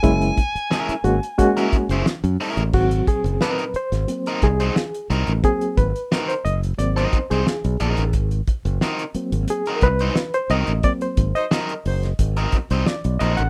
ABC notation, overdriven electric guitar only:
X:1
M:4/4
L:1/16
Q:1/4=89
K:Abmix
V:1 name="Overdriven electric guitar"
z4 [A,D_FB] z4 [A,DFB] z [A,DFc] z2 [A,DFB] z | z4 [G,CEB] z4 [G,CEB] z [G,CEc] z2 [G,CEB] z | z4 [G,CEB] z4 [G,CEB] z [G,CEc] z2 [G,CEB] z | z4 [G,CEB] z4 [G,CEB] z [G,CEc] z2 [G,CEB] z |
z4 [G,CEB] z4 [G,CEB] z [G,CEc] z2 [G,CEB] z |]